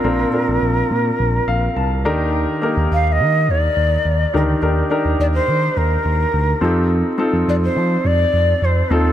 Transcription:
0.00 0.25 A#1 loud
0.00 0.04 C4 medium
0.00 0.28 C4 medium
0.00 0.04 D4 medium
0.00 0.05 F4 medium
0.00 0.05 A#4 medium
0.00 2.06 A#4 medium
0.04 0.86 A#2 medium
0.04 0.28 D4 medium
0.04 0.28 F4 medium
0.04 0.28 A#4 medium
0.32 1.26 C4 medium
0.32 1.27 D4 medium
0.32 1.27 F4 medium
0.32 1.27 A#4 medium
0.48 0.58 A#1 medium
0.62 0.82 A#1 loud
0.90 1.11 A#2 loud
1.19 1.40 A#1 loud
1.47 1.68 A#1 loud
1.47 1.74 F5 medium
1.76 2.06 C2 medium
1.76 2.03 A5 medium
2.05 2.46 D#2 medium
2.05 2.87 D#3 medium
2.05 2.52 D4 medium
2.05 2.52 D#4 medium
2.05 2.52 G4 medium
2.05 2.52 A#4 medium
2.05 2.32 A#5 medium
2.62 3.55 A#3 medium
2.62 3.56 D#4 medium
2.62 3.56 G4 medium
2.62 3.56 A#4 medium
2.77 2.87 D#2 medium
2.91 3.21 D#2 loud
2.91 3.07 F5 loud
3.07 3.13 F5 medium
3.12 3.52 D#5 medium
3.19 3.49 D#3 medium
3.48 3.68 D#2 medium
3.48 4.35 D5 loud
3.76 3.97 D#2 loud
4.05 4.26 D#2 medium
4.33 4.54 D2 medium
4.33 5.16 D#3 medium
4.33 4.57 D4 medium
4.33 4.57 D#4 medium
4.33 4.57 G4 medium
4.33 4.57 A#4 medium
4.33 4.42 A#4 medium
4.62 4.83 D#2 loud
4.62 4.85 D4 medium
4.62 4.86 D#4 medium
4.62 4.86 G4 medium
4.62 4.86 A#4 medium
4.90 5.84 D4 medium
4.90 5.84 D#4 medium
4.90 5.84 G4 medium
4.90 5.84 A#4 medium
5.05 5.15 D#2 medium
5.19 5.40 D#2 loud
5.19 5.26 D5 loud
5.34 5.79 C5 medium
5.48 5.68 D#3 medium
5.76 5.97 D#2 loud
5.76 6.66 A#4 medium
6.05 6.25 D#2 medium
6.33 6.54 D2 loud
6.61 7.03 F2 medium
6.61 7.08 C4 medium
6.61 7.08 D#4 medium
6.61 7.09 F4 medium
6.61 6.92 G4 medium
6.61 7.09 A4 medium
7.18 8.12 C4 medium
7.18 8.12 D#4 medium
7.18 8.12 F4 medium
7.18 8.13 A4 medium
7.33 7.43 F2 medium
7.47 7.68 F2 loud
7.47 7.55 D5 loud
7.64 8.08 C5 loud
7.76 7.97 F3 loud
8.04 8.25 F2 loud
8.04 8.66 D5 loud
8.33 8.54 F2 loud
8.62 8.82 F2 loud
8.62 8.95 C5 medium
8.90 9.11 D#2 medium
8.90 9.12 C4 medium
8.90 9.12 D#4 medium
8.90 9.12 F4 medium
8.90 9.12 A4 medium

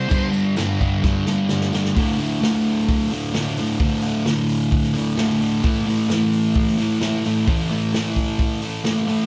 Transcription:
0.00 0.24 C5 medium
0.09 0.31 G2 loud
0.09 0.31 D3 loud
0.09 0.32 G3 loud
0.09 kick loud
0.09 tambourine medium
0.09 crash loud
0.32 0.55 G2 medium
0.32 0.56 D3 medium
0.32 0.57 G3 medium
0.32 tambourine medium
0.32 crash medium
0.56 0.79 G2 loud
0.56 0.79 D3 loud
0.56 0.80 G3 loud
0.56 snare loud
0.56 tambourine loud
0.56 crash medium
0.80 1.01 G2 medium
0.80 1.02 D3 medium
0.80 1.03 G3 medium
0.80 kick medium
0.80 tambourine soft
0.80 crash medium
1.02 1.25 G2 medium
1.02 1.26 D3 loud
1.02 1.26 G3 loud
1.02 kick loud
1.02 snare medium
1.02 tambourine soft
1.26 1.47 G2 medium
1.26 1.48 D3 loud
1.26 1.48 G3 loud
1.26 snare medium
1.26 tambourine medium
1.48 1.71 G2 medium
1.48 1.72 D3 medium
1.48 1.73 G3 medium
1.48 snare medium
1.48 tambourine medium
1.61 snare medium
1.73 1.94 G2 medium
1.73 1.94 D3 medium
1.73 1.94 G3 loud
1.73 snare medium
1.73 tambourine medium
1.85 snare medium
1.95 2.40 D2 medium
1.95 2.20 A2 medium
1.95 2.18 D3 loud
1.95 kick loud
1.95 open hi-hat loud
2.18 2.41 A2 medium
2.18 2.43 D3 medium
2.18 open hi-hat medium
2.40 3.32 D2 medium
2.40 3.12 A2 medium
2.40 3.09 D3 medium
2.40 snare loud
2.40 open hi-hat medium
2.67 open hi-hat medium
2.89 kick loud
2.89 open hi-hat medium
3.10 3.34 A2 medium
3.10 3.35 D3 medium
3.10 open hi-hat medium
3.33 3.79 D2 medium
3.33 3.59 A2 medium
3.33 3.57 D3 medium
3.33 snare loud
3.33 open hi-hat medium
3.57 3.81 A2 medium
3.57 3.82 D3 medium
3.57 open hi-hat medium
3.80 4.24 D2 medium
3.80 4.04 A2 medium
3.80 4.01 D3 loud
3.80 kick loud
3.80 open hi-hat medium
4.01 4.27 D3 medium
4.01 open hi-hat medium
4.06 4.25 A2 medium
4.25 5.15 D2 medium
4.25 4.95 A2 medium
4.25 4.92 D3 loud
4.25 snare loud
4.25 open hi-hat medium
4.49 open hi-hat medium
4.72 kick loud
4.72 open hi-hat medium
4.83 snare soft
4.93 5.17 A2 medium
4.93 5.19 D3 medium
4.93 open hi-hat medium
5.16 5.61 D2 medium
5.16 5.41 A2 medium
5.16 5.39 D3 medium
5.16 snare loud
5.16 open hi-hat medium
5.40 5.61 A2 medium
5.40 5.62 D3 medium
5.40 open hi-hat medium
5.62 6.09 A2 medium
5.62 5.89 E3 loud
5.62 5.86 A3 loud
5.62 kick loud
5.62 open hi-hat medium
5.86 6.11 E3 medium
5.86 6.12 A3 medium
5.86 open hi-hat medium
6.09 6.98 A2 medium
6.09 6.80 E3 medium
6.09 6.77 A3 medium
6.09 snare loud
6.09 open hi-hat medium
6.33 open hi-hat medium
6.54 kick loud
6.54 open hi-hat medium
6.67 snare soft
6.78 7.00 E3 medium
6.78 7.02 A3 medium
6.78 open hi-hat medium
6.99 7.45 A2 medium
6.99 7.26 E3 loud
6.99 7.24 A3 loud
6.99 snare loud
6.99 open hi-hat medium
7.24 7.47 E3 medium
7.24 7.49 A3 medium
7.24 open hi-hat medium
7.46 7.92 A2 medium
7.46 7.72 E3 loud
7.46 7.70 A3 medium
7.46 kick loud
7.46 open hi-hat medium
7.70 7.94 E3 medium
7.70 7.96 A3 medium
7.70 open hi-hat medium
7.93 8.83 A2 medium
7.93 8.64 E3 medium
7.93 8.61 A3 medium
7.93 snare loud
7.93 open hi-hat medium
8.16 kick medium
8.16 open hi-hat medium
8.39 kick loud
8.39 open hi-hat medium
8.62 8.85 E3 medium
8.62 8.87 A3 medium
8.62 open hi-hat medium
8.84 9.26 A2 medium
8.84 9.09 E3 loud
8.84 9.07 A3 loud
8.84 snare loud
8.84 open hi-hat medium
8.96 snare soft
9.07 9.26 E3 medium
9.07 9.26 A3 medium
9.07 open hi-hat medium

